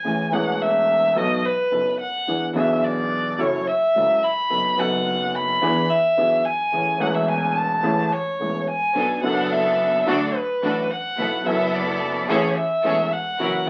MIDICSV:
0, 0, Header, 1, 5, 480
1, 0, Start_track
1, 0, Key_signature, 3, "major"
1, 0, Tempo, 556070
1, 39, Time_signature, 4, 2, 24, 8
1, 11822, End_track
2, 0, Start_track
2, 0, Title_t, "Violin"
2, 0, Program_c, 0, 40
2, 0, Note_on_c, 0, 80, 92
2, 286, Note_on_c, 0, 78, 82
2, 299, Note_off_c, 0, 80, 0
2, 534, Note_on_c, 0, 76, 86
2, 547, Note_off_c, 0, 78, 0
2, 1016, Note_on_c, 0, 75, 85
2, 1029, Note_off_c, 0, 76, 0
2, 1250, Note_on_c, 0, 71, 82
2, 1263, Note_off_c, 0, 75, 0
2, 1722, Note_off_c, 0, 71, 0
2, 1727, Note_on_c, 0, 78, 93
2, 2175, Note_off_c, 0, 78, 0
2, 2211, Note_on_c, 0, 76, 82
2, 2456, Note_on_c, 0, 74, 86
2, 2468, Note_off_c, 0, 76, 0
2, 2936, Note_on_c, 0, 73, 84
2, 2949, Note_off_c, 0, 74, 0
2, 3175, Note_on_c, 0, 76, 88
2, 3188, Note_off_c, 0, 73, 0
2, 3652, Note_on_c, 0, 83, 97
2, 3665, Note_off_c, 0, 76, 0
2, 4139, Note_on_c, 0, 78, 95
2, 4152, Note_off_c, 0, 83, 0
2, 4619, Note_on_c, 0, 83, 98
2, 4632, Note_off_c, 0, 78, 0
2, 5090, Note_on_c, 0, 76, 92
2, 5103, Note_off_c, 0, 83, 0
2, 5572, Note_on_c, 0, 80, 95
2, 5585, Note_off_c, 0, 76, 0
2, 6053, Note_on_c, 0, 78, 82
2, 6066, Note_off_c, 0, 80, 0
2, 6171, Note_on_c, 0, 76, 77
2, 6184, Note_off_c, 0, 78, 0
2, 6286, Note_on_c, 0, 80, 85
2, 6299, Note_off_c, 0, 76, 0
2, 6524, Note_on_c, 0, 81, 87
2, 6537, Note_off_c, 0, 80, 0
2, 7015, Note_on_c, 0, 73, 82
2, 7028, Note_off_c, 0, 81, 0
2, 7493, Note_on_c, 0, 80, 86
2, 7506, Note_off_c, 0, 73, 0
2, 7966, Note_off_c, 0, 80, 0
2, 7971, Note_on_c, 0, 78, 81
2, 8217, Note_on_c, 0, 76, 78
2, 8230, Note_off_c, 0, 78, 0
2, 8704, Note_on_c, 0, 74, 81
2, 8717, Note_off_c, 0, 76, 0
2, 8943, Note_on_c, 0, 71, 79
2, 8956, Note_off_c, 0, 74, 0
2, 9421, Note_on_c, 0, 78, 92
2, 9434, Note_off_c, 0, 71, 0
2, 9893, Note_on_c, 0, 76, 84
2, 9906, Note_off_c, 0, 78, 0
2, 10136, Note_on_c, 0, 74, 91
2, 10149, Note_off_c, 0, 76, 0
2, 10611, Note_off_c, 0, 74, 0
2, 10617, Note_on_c, 0, 73, 77
2, 10852, Note_on_c, 0, 76, 85
2, 10865, Note_off_c, 0, 73, 0
2, 11332, Note_on_c, 0, 78, 89
2, 11345, Note_off_c, 0, 76, 0
2, 11822, Note_off_c, 0, 78, 0
2, 11822, End_track
3, 0, Start_track
3, 0, Title_t, "String section"
3, 0, Program_c, 1, 48
3, 7735, Note_on_c, 1, 59, 45
3, 7735, Note_on_c, 1, 62, 40
3, 7737, Note_on_c, 1, 69, 51
3, 7934, Note_off_c, 1, 59, 0
3, 7935, Note_off_c, 1, 62, 0
3, 7935, Note_off_c, 1, 69, 0
3, 7969, Note_on_c, 1, 59, 76
3, 7972, Note_on_c, 1, 62, 62
3, 7974, Note_on_c, 1, 69, 84
3, 8654, Note_off_c, 1, 59, 0
3, 8656, Note_off_c, 1, 62, 0
3, 8657, Note_off_c, 1, 69, 0
3, 8691, Note_on_c, 1, 62, 71
3, 8691, Note_on_c, 1, 66, 62
3, 8693, Note_on_c, 1, 69, 80
3, 8893, Note_off_c, 1, 62, 0
3, 8893, Note_off_c, 1, 66, 0
3, 8893, Note_off_c, 1, 69, 0
3, 9174, Note_on_c, 1, 62, 51
3, 9177, Note_on_c, 1, 66, 44
3, 9177, Note_on_c, 1, 69, 50
3, 9375, Note_off_c, 1, 62, 0
3, 9376, Note_off_c, 1, 66, 0
3, 9376, Note_off_c, 1, 69, 0
3, 9651, Note_on_c, 1, 59, 46
3, 9655, Note_on_c, 1, 64, 40
3, 9655, Note_on_c, 1, 69, 49
3, 9853, Note_off_c, 1, 59, 0
3, 9854, Note_off_c, 1, 69, 0
3, 9855, Note_off_c, 1, 64, 0
3, 9890, Note_on_c, 1, 59, 78
3, 9892, Note_on_c, 1, 69, 82
3, 9894, Note_on_c, 1, 64, 68
3, 10572, Note_off_c, 1, 59, 0
3, 10572, Note_off_c, 1, 69, 0
3, 10573, Note_off_c, 1, 64, 0
3, 10606, Note_on_c, 1, 61, 70
3, 10609, Note_on_c, 1, 69, 77
3, 10610, Note_on_c, 1, 68, 67
3, 10808, Note_off_c, 1, 61, 0
3, 10809, Note_off_c, 1, 68, 0
3, 10809, Note_off_c, 1, 69, 0
3, 11084, Note_on_c, 1, 61, 53
3, 11086, Note_on_c, 1, 68, 50
3, 11088, Note_on_c, 1, 69, 57
3, 11285, Note_off_c, 1, 61, 0
3, 11286, Note_off_c, 1, 68, 0
3, 11287, Note_off_c, 1, 69, 0
3, 11562, Note_on_c, 1, 64, 48
3, 11562, Note_on_c, 1, 66, 42
3, 11565, Note_on_c, 1, 70, 54
3, 11763, Note_off_c, 1, 64, 0
3, 11763, Note_off_c, 1, 66, 0
3, 11764, Note_off_c, 1, 70, 0
3, 11822, End_track
4, 0, Start_track
4, 0, Title_t, "Grand piano"
4, 0, Program_c, 2, 0
4, 38, Note_on_c, 2, 33, 49
4, 38, Note_on_c, 2, 52, 42
4, 40, Note_on_c, 2, 57, 39
4, 41, Note_on_c, 2, 45, 47
4, 41, Note_on_c, 2, 61, 39
4, 42, Note_on_c, 2, 68, 47
4, 241, Note_off_c, 2, 52, 0
4, 242, Note_off_c, 2, 33, 0
4, 242, Note_off_c, 2, 57, 0
4, 243, Note_off_c, 2, 45, 0
4, 243, Note_off_c, 2, 61, 0
4, 244, Note_off_c, 2, 68, 0
4, 264, Note_on_c, 2, 52, 60
4, 276, Note_on_c, 2, 57, 57
4, 280, Note_on_c, 2, 40, 72
4, 281, Note_on_c, 2, 28, 73
4, 286, Note_on_c, 2, 61, 61
4, 296, Note_on_c, 2, 68, 70
4, 960, Note_off_c, 2, 52, 0
4, 967, Note_off_c, 2, 57, 0
4, 968, Note_off_c, 2, 40, 0
4, 969, Note_off_c, 2, 28, 0
4, 971, Note_off_c, 2, 61, 0
4, 976, Note_off_c, 2, 68, 0
4, 998, Note_on_c, 2, 54, 68
4, 1000, Note_on_c, 2, 59, 58
4, 1000, Note_on_c, 2, 63, 61
4, 1002, Note_on_c, 2, 35, 79
4, 1002, Note_on_c, 2, 47, 78
4, 1002, Note_on_c, 2, 69, 74
4, 1204, Note_off_c, 2, 54, 0
4, 1205, Note_off_c, 2, 59, 0
4, 1205, Note_off_c, 2, 63, 0
4, 1206, Note_off_c, 2, 35, 0
4, 1206, Note_off_c, 2, 47, 0
4, 1206, Note_off_c, 2, 69, 0
4, 1480, Note_on_c, 2, 54, 42
4, 1481, Note_on_c, 2, 59, 37
4, 1483, Note_on_c, 2, 42, 48
4, 1485, Note_on_c, 2, 30, 47
4, 1485, Note_on_c, 2, 63, 37
4, 1486, Note_on_c, 2, 69, 45
4, 1685, Note_off_c, 2, 54, 0
4, 1686, Note_off_c, 2, 59, 0
4, 1687, Note_off_c, 2, 42, 0
4, 1688, Note_off_c, 2, 30, 0
4, 1688, Note_off_c, 2, 63, 0
4, 1689, Note_off_c, 2, 69, 0
4, 1965, Note_on_c, 2, 52, 52
4, 1966, Note_on_c, 2, 40, 51
4, 1968, Note_on_c, 2, 59, 38
4, 1968, Note_on_c, 2, 62, 41
4, 1970, Note_on_c, 2, 68, 46
4, 2169, Note_off_c, 2, 40, 0
4, 2170, Note_off_c, 2, 52, 0
4, 2171, Note_off_c, 2, 59, 0
4, 2171, Note_off_c, 2, 62, 0
4, 2171, Note_off_c, 2, 68, 0
4, 2184, Note_on_c, 2, 52, 65
4, 2196, Note_on_c, 2, 59, 59
4, 2204, Note_on_c, 2, 47, 74
4, 2205, Note_on_c, 2, 35, 79
4, 2211, Note_on_c, 2, 62, 61
4, 2219, Note_on_c, 2, 68, 75
4, 2881, Note_off_c, 2, 52, 0
4, 2886, Note_off_c, 2, 59, 0
4, 2891, Note_off_c, 2, 35, 0
4, 2891, Note_off_c, 2, 47, 0
4, 2894, Note_off_c, 2, 62, 0
4, 2898, Note_off_c, 2, 68, 0
4, 2921, Note_on_c, 2, 54, 86
4, 2927, Note_on_c, 2, 42, 80
4, 2927, Note_on_c, 2, 61, 64
4, 2928, Note_on_c, 2, 64, 63
4, 2928, Note_on_c, 2, 69, 82
4, 3128, Note_off_c, 2, 54, 0
4, 3129, Note_off_c, 2, 61, 0
4, 3130, Note_off_c, 2, 42, 0
4, 3130, Note_off_c, 2, 64, 0
4, 3130, Note_off_c, 2, 69, 0
4, 3415, Note_on_c, 2, 54, 45
4, 3415, Note_on_c, 2, 61, 39
4, 3417, Note_on_c, 2, 37, 53
4, 3417, Note_on_c, 2, 49, 53
4, 3418, Note_on_c, 2, 64, 38
4, 3423, Note_on_c, 2, 69, 46
4, 3614, Note_off_c, 2, 54, 0
4, 3614, Note_off_c, 2, 61, 0
4, 3615, Note_off_c, 2, 37, 0
4, 3615, Note_off_c, 2, 49, 0
4, 3615, Note_off_c, 2, 64, 0
4, 3618, Note_off_c, 2, 69, 0
4, 3885, Note_on_c, 2, 54, 53
4, 3888, Note_on_c, 2, 42, 52
4, 3888, Note_on_c, 2, 59, 43
4, 3888, Note_on_c, 2, 69, 48
4, 3889, Note_on_c, 2, 63, 42
4, 4089, Note_off_c, 2, 54, 0
4, 4090, Note_off_c, 2, 42, 0
4, 4090, Note_off_c, 2, 59, 0
4, 4090, Note_off_c, 2, 63, 0
4, 4090, Note_off_c, 2, 69, 0
4, 4110, Note_on_c, 2, 54, 62
4, 4122, Note_on_c, 2, 59, 62
4, 4123, Note_off_c, 2, 54, 0
4, 4127, Note_on_c, 2, 42, 77
4, 4129, Note_on_c, 2, 54, 83
4, 4134, Note_on_c, 2, 63, 60
4, 4148, Note_on_c, 2, 69, 74
4, 4808, Note_off_c, 2, 59, 0
4, 4810, Note_off_c, 2, 42, 0
4, 4812, Note_off_c, 2, 54, 0
4, 4814, Note_off_c, 2, 63, 0
4, 4821, Note_off_c, 2, 69, 0
4, 4849, Note_on_c, 2, 52, 83
4, 4850, Note_on_c, 2, 59, 64
4, 4852, Note_on_c, 2, 40, 82
4, 4852, Note_on_c, 2, 62, 65
4, 4855, Note_on_c, 2, 68, 76
4, 5050, Note_off_c, 2, 59, 0
4, 5051, Note_off_c, 2, 40, 0
4, 5051, Note_off_c, 2, 52, 0
4, 5051, Note_off_c, 2, 62, 0
4, 5052, Note_off_c, 2, 68, 0
4, 5326, Note_on_c, 2, 52, 44
4, 5329, Note_on_c, 2, 35, 52
4, 5329, Note_on_c, 2, 59, 42
4, 5330, Note_on_c, 2, 47, 54
4, 5330, Note_on_c, 2, 62, 42
4, 5332, Note_on_c, 2, 68, 51
4, 5528, Note_off_c, 2, 52, 0
4, 5529, Note_off_c, 2, 35, 0
4, 5529, Note_off_c, 2, 47, 0
4, 5529, Note_off_c, 2, 59, 0
4, 5529, Note_off_c, 2, 62, 0
4, 5530, Note_off_c, 2, 68, 0
4, 5804, Note_on_c, 2, 52, 46
4, 5804, Note_on_c, 2, 57, 40
4, 5807, Note_on_c, 2, 33, 52
4, 5807, Note_on_c, 2, 45, 52
4, 5808, Note_on_c, 2, 61, 43
4, 5810, Note_on_c, 2, 68, 47
4, 6006, Note_off_c, 2, 52, 0
4, 6006, Note_off_c, 2, 57, 0
4, 6008, Note_off_c, 2, 33, 0
4, 6008, Note_off_c, 2, 45, 0
4, 6008, Note_off_c, 2, 61, 0
4, 6009, Note_off_c, 2, 68, 0
4, 6022, Note_on_c, 2, 52, 63
4, 6037, Note_on_c, 2, 57, 55
4, 6042, Note_on_c, 2, 28, 78
4, 6042, Note_on_c, 2, 40, 75
4, 6049, Note_on_c, 2, 61, 60
4, 6061, Note_on_c, 2, 68, 72
4, 6718, Note_off_c, 2, 52, 0
4, 6725, Note_off_c, 2, 57, 0
4, 6728, Note_off_c, 2, 28, 0
4, 6728, Note_off_c, 2, 40, 0
4, 6731, Note_off_c, 2, 61, 0
4, 6737, Note_off_c, 2, 68, 0
4, 6758, Note_on_c, 2, 52, 67
4, 6759, Note_on_c, 2, 33, 78
4, 6759, Note_on_c, 2, 57, 65
4, 6760, Note_on_c, 2, 45, 77
4, 6761, Note_on_c, 2, 61, 60
4, 6763, Note_on_c, 2, 68, 78
4, 6964, Note_off_c, 2, 33, 0
4, 6964, Note_off_c, 2, 52, 0
4, 6965, Note_off_c, 2, 45, 0
4, 6965, Note_off_c, 2, 57, 0
4, 6966, Note_off_c, 2, 61, 0
4, 6967, Note_off_c, 2, 68, 0
4, 7249, Note_on_c, 2, 52, 41
4, 7252, Note_on_c, 2, 57, 36
4, 7254, Note_on_c, 2, 28, 49
4, 7254, Note_on_c, 2, 40, 46
4, 7255, Note_on_c, 2, 61, 36
4, 7256, Note_on_c, 2, 68, 42
4, 7450, Note_off_c, 2, 52, 0
4, 7452, Note_off_c, 2, 57, 0
4, 7453, Note_off_c, 2, 28, 0
4, 7453, Note_off_c, 2, 40, 0
4, 7453, Note_off_c, 2, 61, 0
4, 7454, Note_off_c, 2, 68, 0
4, 7725, Note_on_c, 2, 54, 43
4, 7726, Note_on_c, 2, 59, 40
4, 7728, Note_on_c, 2, 47, 48
4, 7730, Note_on_c, 2, 62, 40
4, 7731, Note_on_c, 2, 69, 49
4, 7732, Note_on_c, 2, 35, 50
4, 7930, Note_off_c, 2, 54, 0
4, 7930, Note_off_c, 2, 59, 0
4, 7931, Note_off_c, 2, 47, 0
4, 7932, Note_off_c, 2, 62, 0
4, 7932, Note_off_c, 2, 69, 0
4, 7933, Note_off_c, 2, 35, 0
4, 7949, Note_on_c, 2, 54, 60
4, 7961, Note_on_c, 2, 59, 60
4, 7968, Note_on_c, 2, 42, 76
4, 7970, Note_on_c, 2, 30, 76
4, 7975, Note_on_c, 2, 62, 58
4, 7984, Note_on_c, 2, 69, 71
4, 8645, Note_off_c, 2, 54, 0
4, 8650, Note_off_c, 2, 59, 0
4, 8654, Note_off_c, 2, 42, 0
4, 8655, Note_off_c, 2, 30, 0
4, 8657, Note_off_c, 2, 62, 0
4, 8662, Note_off_c, 2, 69, 0
4, 8686, Note_on_c, 2, 54, 68
4, 8689, Note_on_c, 2, 57, 63
4, 8690, Note_on_c, 2, 38, 81
4, 8690, Note_on_c, 2, 50, 79
4, 8691, Note_on_c, 2, 62, 63
4, 8692, Note_on_c, 2, 69, 72
4, 8890, Note_off_c, 2, 54, 0
4, 8892, Note_off_c, 2, 38, 0
4, 8892, Note_off_c, 2, 50, 0
4, 8892, Note_off_c, 2, 57, 0
4, 8892, Note_off_c, 2, 62, 0
4, 8893, Note_off_c, 2, 69, 0
4, 9171, Note_on_c, 2, 54, 44
4, 9174, Note_on_c, 2, 45, 49
4, 9174, Note_on_c, 2, 57, 37
4, 9174, Note_on_c, 2, 69, 48
4, 9175, Note_on_c, 2, 33, 54
4, 9177, Note_on_c, 2, 62, 39
4, 9373, Note_off_c, 2, 54, 0
4, 9374, Note_off_c, 2, 45, 0
4, 9374, Note_off_c, 2, 57, 0
4, 9375, Note_off_c, 2, 33, 0
4, 9375, Note_off_c, 2, 69, 0
4, 9376, Note_off_c, 2, 62, 0
4, 9651, Note_on_c, 2, 64, 40
4, 9652, Note_on_c, 2, 35, 54
4, 9652, Note_on_c, 2, 54, 43
4, 9654, Note_on_c, 2, 47, 54
4, 9654, Note_on_c, 2, 59, 41
4, 9657, Note_on_c, 2, 69, 47
4, 9853, Note_off_c, 2, 35, 0
4, 9853, Note_off_c, 2, 54, 0
4, 9853, Note_off_c, 2, 64, 0
4, 9854, Note_off_c, 2, 47, 0
4, 9854, Note_off_c, 2, 59, 0
4, 9855, Note_off_c, 2, 69, 0
4, 9877, Note_on_c, 2, 54, 65
4, 9886, Note_on_c, 2, 59, 59
4, 9892, Note_on_c, 2, 30, 79
4, 9893, Note_on_c, 2, 42, 83
4, 9898, Note_on_c, 2, 64, 57
4, 9910, Note_on_c, 2, 69, 71
4, 10565, Note_off_c, 2, 54, 0
4, 10570, Note_off_c, 2, 59, 0
4, 10572, Note_off_c, 2, 30, 0
4, 10573, Note_off_c, 2, 42, 0
4, 10575, Note_off_c, 2, 64, 0
4, 10581, Note_off_c, 2, 69, 0
4, 10604, Note_on_c, 2, 33, 85
4, 10604, Note_on_c, 2, 45, 79
4, 10604, Note_on_c, 2, 52, 72
4, 10605, Note_on_c, 2, 57, 65
4, 10605, Note_on_c, 2, 61, 70
4, 10608, Note_on_c, 2, 68, 76
4, 10806, Note_off_c, 2, 52, 0
4, 10807, Note_off_c, 2, 33, 0
4, 10807, Note_off_c, 2, 45, 0
4, 10807, Note_off_c, 2, 57, 0
4, 10807, Note_off_c, 2, 61, 0
4, 10809, Note_off_c, 2, 68, 0
4, 11079, Note_on_c, 2, 52, 45
4, 11082, Note_on_c, 2, 57, 39
4, 11083, Note_on_c, 2, 61, 41
4, 11085, Note_on_c, 2, 28, 56
4, 11085, Note_on_c, 2, 40, 55
4, 11085, Note_on_c, 2, 68, 52
4, 11283, Note_off_c, 2, 52, 0
4, 11284, Note_off_c, 2, 57, 0
4, 11285, Note_off_c, 2, 61, 0
4, 11286, Note_off_c, 2, 28, 0
4, 11286, Note_off_c, 2, 40, 0
4, 11286, Note_off_c, 2, 68, 0
4, 11559, Note_on_c, 2, 52, 47
4, 11561, Note_on_c, 2, 54, 55
4, 11562, Note_on_c, 2, 61, 45
4, 11564, Note_on_c, 2, 58, 40
4, 11564, Note_on_c, 2, 66, 49
4, 11565, Note_on_c, 2, 42, 55
4, 11761, Note_off_c, 2, 52, 0
4, 11762, Note_off_c, 2, 54, 0
4, 11763, Note_off_c, 2, 61, 0
4, 11764, Note_off_c, 2, 42, 0
4, 11764, Note_off_c, 2, 58, 0
4, 11764, Note_off_c, 2, 66, 0
4, 11785, Note_on_c, 2, 52, 74
4, 11794, Note_on_c, 2, 58, 64
4, 11822, Note_off_c, 2, 52, 0
4, 11822, Note_off_c, 2, 58, 0
4, 11822, End_track
5, 0, Start_track
5, 0, Title_t, "Double bass"
5, 0, Program_c, 3, 43
5, 43, Note_on_c, 3, 33, 59
5, 244, Note_off_c, 3, 33, 0
5, 279, Note_on_c, 3, 28, 85
5, 968, Note_off_c, 3, 28, 0
5, 1003, Note_on_c, 3, 35, 87
5, 1206, Note_off_c, 3, 35, 0
5, 1487, Note_on_c, 3, 30, 57
5, 1689, Note_off_c, 3, 30, 0
5, 1966, Note_on_c, 3, 40, 62
5, 2169, Note_off_c, 3, 40, 0
5, 2209, Note_on_c, 3, 35, 86
5, 2893, Note_off_c, 3, 35, 0
5, 2928, Note_on_c, 3, 30, 88
5, 3130, Note_off_c, 3, 30, 0
5, 3409, Note_on_c, 3, 37, 64
5, 3611, Note_off_c, 3, 37, 0
5, 3894, Note_on_c, 3, 30, 60
5, 4093, Note_off_c, 3, 30, 0
5, 4132, Note_on_c, 3, 30, 92
5, 4813, Note_off_c, 3, 30, 0
5, 4851, Note_on_c, 3, 40, 87
5, 5050, Note_off_c, 3, 40, 0
5, 5330, Note_on_c, 3, 35, 60
5, 5529, Note_off_c, 3, 35, 0
5, 5810, Note_on_c, 3, 33, 58
5, 6009, Note_off_c, 3, 33, 0
5, 6047, Note_on_c, 3, 28, 90
5, 6730, Note_off_c, 3, 28, 0
5, 6768, Note_on_c, 3, 33, 87
5, 6969, Note_off_c, 3, 33, 0
5, 7250, Note_on_c, 3, 28, 55
5, 7451, Note_off_c, 3, 28, 0
5, 7731, Note_on_c, 3, 35, 57
5, 7932, Note_off_c, 3, 35, 0
5, 7974, Note_on_c, 3, 30, 90
5, 8657, Note_off_c, 3, 30, 0
5, 8690, Note_on_c, 3, 38, 84
5, 8892, Note_off_c, 3, 38, 0
5, 9175, Note_on_c, 3, 33, 57
5, 9375, Note_off_c, 3, 33, 0
5, 9653, Note_on_c, 3, 35, 65
5, 9854, Note_off_c, 3, 35, 0
5, 9892, Note_on_c, 3, 30, 95
5, 10572, Note_off_c, 3, 30, 0
5, 10605, Note_on_c, 3, 33, 86
5, 10807, Note_off_c, 3, 33, 0
5, 11084, Note_on_c, 3, 28, 60
5, 11285, Note_off_c, 3, 28, 0
5, 11562, Note_on_c, 3, 30, 66
5, 11763, Note_off_c, 3, 30, 0
5, 11822, End_track
0, 0, End_of_file